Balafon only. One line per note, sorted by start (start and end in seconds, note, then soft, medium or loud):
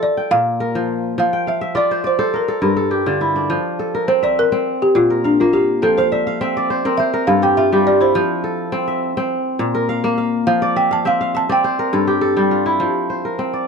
0.03 0.32 D5 medium
0.31 1.18 F5 loud
1.20 1.49 F5 medium
1.48 1.77 E5 medium
1.77 2.06 D5 medium
2.07 2.36 C5 medium
2.36 3.18 A#4 medium
4.08 4.22 C5 loud
4.24 4.30 D5 medium
4.39 4.79 A#4 loud
4.82 4.96 G4 medium
4.96 5.25 F4 medium
5.25 5.40 D4 medium
5.40 5.46 F4 medium
5.53 5.83 G4 medium
5.82 5.98 A4 medium
5.98 6.12 C5 medium
6.12 6.38 D5 medium
6.98 7.25 E5 medium
7.27 7.43 F5 medium
7.43 7.57 G5 loud
7.57 7.87 E5 loud
7.87 8.02 D5 medium
8.02 8.84 C5 medium
10.47 10.77 F5 medium
10.77 10.92 G5 medium
10.93 11.06 A5 medium
11.07 11.36 F5 medium
11.37 11.51 A5 medium
11.52 12.34 G5 medium